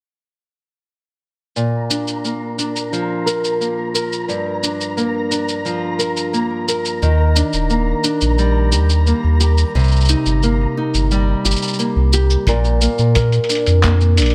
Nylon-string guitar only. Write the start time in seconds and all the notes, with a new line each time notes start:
1.56 A#2
1.90 D4
2.25 A#3
2.58 D4
2.92 F3
3.26 A#4
3.60 A#3
3.94 A#4
4.28 G2
4.63 D4
4.97 A#3
5.31 D4
5.65 F3
5.99 A#4
6.33 A#3
6.68 A#4
7.02 D#3
7.36 D4
7.70 A#3
8.04 D4
8.38 G3
8.72 G4
9.07 A#3
9.40 G4
9.75 C3
10.09 D#4
10.43 A#3
10.77 D#4
11.11 G3
11.45 G4
11.79 A#3
12.14 G4
12.48 A#2 A#4
12.82 A#3
13.15 A#4
13.49 D4
13.83 A#3
14.17 D4